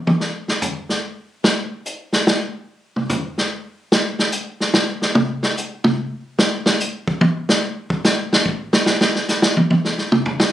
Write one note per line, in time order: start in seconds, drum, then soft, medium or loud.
0.07 high tom medium
0.20 snare soft
0.48 snare soft
0.62 floor tom medium
0.62 hi-hat pedal soft
0.89 snare soft
1.44 snare medium
1.85 hi-hat pedal medium
2.13 snare soft
2.27 snare medium
2.96 mid tom soft
3.09 floor tom medium
3.09 hi-hat pedal soft
3.38 snare soft
3.92 snare medium
4.19 snare soft
4.32 hi-hat pedal medium
4.60 snare soft
4.74 snare medium
5.02 snare soft
5.15 mid tom medium
5.43 snare soft
5.57 hi-hat pedal soft
5.84 mid tom medium
6.39 snare loud
6.66 snare medium
6.80 hi-hat pedal medium
7.08 kick medium
7.21 high tom medium
7.49 snare medium
7.90 kick medium
8.04 snare medium
8.04 hi-hat pedal medium
8.33 snare medium
8.46 kick medium
8.73 snare medium
8.86 snare medium
9.01 snare medium
9.15 snare soft
9.28 snare soft
9.28 hi-hat pedal soft
9.42 snare medium
9.57 high tom medium
9.70 high tom medium
9.85 snare soft
9.98 snare soft
10.12 mid tom medium
10.26 floor tom medium
10.40 snare medium